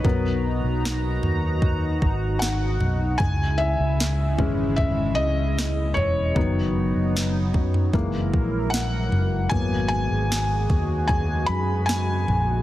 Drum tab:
SD |----o-------o---|----o-------o---|----o-------o---|----o-------o---|
FT |o-----o-o-----o-|o-----o-o-----o-|o-----ooo-----o-|o-----o-o-----o-|
BD |o-------o-o-----|o-----o-o-------|o-----o-o-o-----|o-----o-o-------|